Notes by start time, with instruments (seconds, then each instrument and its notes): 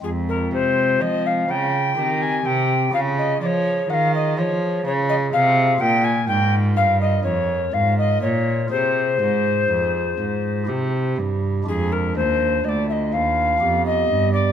0.00 cello F2, pipe organ F2 G#3 C4 F4, recorder G#4
0.29 recorder A#4
0.52 cello C3, pipe organ C3, recorder C5
1.01 cello F3, pipe organ F3, recorder D#5
1.26 recorder F5
1.50 cello C#3, pipe organ C#3, recorder G5
1.96 cello D#3, pipe organ D#3 C4 G4
2.22 recorder G#5
2.45 cello C3, pipe organ C3, recorder G5
2.91 cello C#3, pipe organ C#3 F4 G#4, recorder F5
3.18 recorder D#5
3.41 cello F3, pipe organ F3, recorder D5
3.46 recorder C#5
3.90 cello D#3, pipe organ D#3, recorder F5 F#5
4.15 recorder D#5
4.38 cello F3, pipe organ F3, recorder C#5
4.86 cello C#3, pipe organ C#3, recorder C#5
5.09 recorder D#5
5.33 cello C3, pipe organ C3, recorder F5
5.79 cello A#2, pipe organ A#2 F4 A#4, recorder G5
6.04 recorder G#5
6.28 cello G#2, pipe organ G#2, recorder G5
6.76 pipe organ G2, cello G2, recorder F5
7.01 recorder D#5
7.24 cello F2, pipe organ F2, recorder C#5
7.73 pipe organ G#2, cello G#2, recorder F5
7.98 recorder D#5
8.22 pipe organ A#2, cello A#2, recorder C#5
8.68 pipe organ C3 F4 G#4, cello C3, recorder C5
9.21 cello G#2, pipe organ G#2
9.70 pipe organ F2, cello F2
10.19 cello G#2, pipe organ G#2
10.65 pipe organ C3 E4 G4, cello C3
11.18 pipe organ G2, cello G2
11.63 pipe organ G#3 D4 F4
11.67 cello F2, pipe organ F2, recorder G#4
11.92 recorder A#4
12.16 cello D#2, pipe organ D#2, recorder C5
12.65 cello D2, pipe organ D2, recorder D5 D#5
12.89 recorder D#5 E5
13.13 pipe organ D#2, cello D#2, recorder F5
13.59 cello F2, pipe organ F2 B3 G4
13.85 recorder D#5
14.09 pipe organ G2, cello G2
14.33 recorder D5